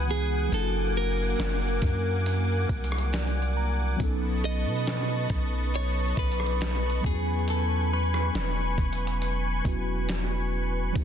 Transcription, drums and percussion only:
0.52 closed hi-hat medium
1.40 snare loud
1.40 closed hi-hat medium
1.82 kick loud
1.82 closed hi-hat medium
2.26 closed hi-hat medium
2.69 kick loud
2.69 closed hi-hat medium
2.84 closed hi-hat medium
2.92 cross-stick medium
2.98 closed hi-hat medium
3.13 snare loud
3.13 closed hi-hat soft
3.27 closed hi-hat soft
3.42 closed hi-hat soft
4.00 kick loud
4.00 closed hi-hat medium
4.87 snare loud
4.87 closed hi-hat medium
5.30 kick loud
5.30 closed hi-hat medium
5.74 closed hi-hat medium
6.17 kick loud
6.17 closed hi-hat medium
6.32 closed hi-hat medium
6.40 cross-stick medium
6.46 closed hi-hat medium
6.61 snare loud
6.61 closed hi-hat medium
6.75 closed hi-hat soft
6.90 closed hi-hat soft
7.04 kick loud
7.48 closed hi-hat medium
8.14 cross-stick medium
8.35 snare loud
8.35 closed hi-hat medium
8.78 kick loud
8.78 closed hi-hat soft
8.93 closed hi-hat medium
9.07 closed hi-hat medium
9.22 closed hi-hat medium
9.65 kick loud
9.65 closed hi-hat medium
10.09 snare loud
10.09 closed hi-hat medium
10.95 kick loud
10.95 closed hi-hat medium

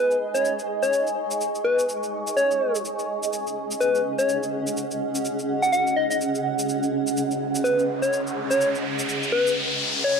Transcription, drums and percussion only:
0.11 shaker soft
0.35 shaker medium
0.45 shaker soft
0.59 shaker soft
0.83 shaker medium
0.93 shaker soft
1.07 shaker soft
1.31 shaker medium
1.41 shaker soft
1.55 shaker soft
1.79 shaker medium
1.89 shaker medium
2.03 shaker soft
2.27 shaker medium
2.37 shaker medium
2.51 shaker soft
2.75 shaker medium
2.85 shaker medium
2.99 shaker soft
3.23 shaker medium
3.33 shaker medium
3.47 shaker soft
3.71 shaker medium
3.81 shaker medium
3.95 shaker soft
4.19 shaker medium
4.29 shaker medium
4.43 shaker soft
4.67 shaker medium
4.77 shaker medium
4.91 shaker soft
5.15 shaker medium
5.25 shaker medium
5.39 shaker soft
5.63 shaker medium
5.73 shaker medium
5.87 shaker soft
6.11 shaker medium
6.21 shaker medium
6.35 shaker soft
6.59 shaker medium
6.69 shaker medium
6.83 shaker soft
7.07 shaker medium
7.17 shaker medium
7.31 shaker soft
7.55 shaker medium
7.65 shaker medium
7.79 shaker soft
8.03 shaker medium
8.13 shaker medium
8.27 shaker soft
8.51 shaker medium
8.61 shaker medium
8.75 shaker soft
8.99 shaker medium
9.09 shaker medium
9.23 shaker soft
9.47 shaker medium

